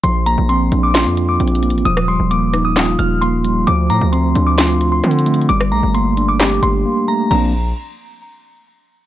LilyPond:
<<
  \new Staff \with { instrumentName = "Synth bell" } { \time 4/4 \key bes \major \tempo 4 = 132 c'''8 bes''8 c'''8. d'''16 c'''8. d'''4~ d'''16 | ees'''8 c'''8 d'''8. ees'''8. f'''8 c'''4 | d'''8 bes''8 c'''8. d'''16 c'''8. c'''4~ c'''16 | d'''8 bes''8 c'''8. d'''8. c'''4 bes''8 |
bes''8 r2. r8 | }
  \new Staff \with { instrumentName = "Tine electric piano" } { \time 4/4 \key bes \major f8 bes8 c'8 d'8 f'4 c'8 bes8 | f8 g8 bes8 ees'8 f'4 bes8 g8 | f8 a8 c'8 d'8 f'4 c'8 a8 | g8 a8 bes8 d'8 g'4 bes8 a8 |
<f bes c' d'>8 r2. r8 | }
  \new Staff \with { instrumentName = "808-style bass" } { \clef bass \time 4/4 \key bes \major bes,,8. bes,,8. bes,,8. f,8. bes,,8. a,,16 | ees,,8. ees,,4.~ ees,,16 ees,,4. | d,8 a,16 d,8. d,4. d4 | g,,8 bes,,16 g,,4.~ g,,16 g,,8 r4 |
bes,,4 r2. | }
  \new DrumStaff \with { instrumentName = "Drums" } \drummode { \time 4/4 hh8 hh8 hh8 hh8 <hc hh sn>8 hh8 \tuplet 3/2 { hh16 hh16 hh16 hh16 hh16 hh16 } | hh16 ss8. hh8 <hh ss>8 <hc hh sn>8 hh8 hh8 hh8 | hh8 hh8 hh8 hh8 <hc hh sn>8 hh8 \tuplet 3/2 { hh16 hh16 hh16 hh16 hh16 hh16 } | hh16 ss8. hh8 hh8 <hc hh sn>8 hh8 r4 |
cymc4 r4 r4 r4 | }
>>